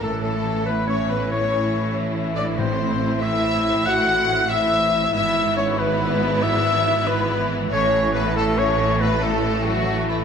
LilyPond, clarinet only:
\new Staff \with { instrumentName = "Clarinet" } { \time 12/8 \key a \mixolydian \tempo 4. = 94 a'8 a'4 b'8 cis''8 b'8 cis''4. r4 d''8 | c''4. e''4. fis''4. e''4. | e''4 cis''8 b'4. e''4. b'4 r8 | cis''4 b'8 a'8 cis''4 b'8 a'4 fis'4 e'8 | }